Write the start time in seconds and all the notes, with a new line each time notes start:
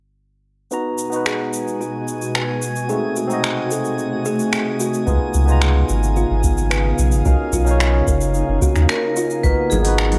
0.71 B2 G#3 B3 D#4 F#4 G#4 B4 G#5 A#5, shaker
0.98 shaker
1.10 B3 D#4, shaker
1.14 F#4 B4
1.26 G#4, finger snap, shaker
1.53 shaker
1.68 shaker
1.81 F#4, shaker
2.08 shaker
2.22 shaker
2.35 B4, finger snap, shaker
2.61 C3 A3 F#4, shaker
2.76 shaker
2.88 A3 C4 D#4 F#4 G#4, shaker
3.16 F#4, shaker
3.27 C4 D#4, shaker
3.32 F#4 D#5
3.44 finger snap, shaker
3.71 A4, shaker
3.85 shaker
3.98 shaker
4.25 G#4, shaker
4.39 shaker
4.53 finger snap, shaker
4.80 F#4, shaker
4.94 shaker
5.06 C#2 C#3 B3 D#4 F4 G#4 B4 F5, kick, shaker
5.34 C#2, shaker
5.46 B3 D#4, shaker
5.50 F4 A#5
5.62 G#4, finger snap, shaker
5.89 G#1, shaker
6.03 shaker
6.16 F4, shaker
6.30 G#1
6.43 kick, shaker
6.58 shaker
6.70 B4, finger snap, shaker
6.98 B1, shaker
7.12 G#1, shaker
7.25 B1 A#3 C#4 D#4 F#4 A#4 F5, kick, shaker
7.52 B1 F4, kick, shaker
7.65 C#4 D#4, shaker
7.69 C#5 F5
7.80 finger snap, shaker
8.07 F#1 A#4, kick, shaker
8.21 shaker
8.34 shaker
8.48 F#1
8.62 F#4, kick, shaker
8.76 D#2, finger snap, shaker
8.89 A#4, finger snap, shaker
9.16 F4, shaker
9.30 shaker
9.43 G#1 B2 G#3 B3 D#4 F#4 A#4 B4, kick, shaker
9.70 G#1 G#4, high conga, shaker
9.82 B3 D#4, open hi-hat, shaker
9.87 F#4 B4
9.98 finger snap, shaker
10.12 open hi-hat, high conga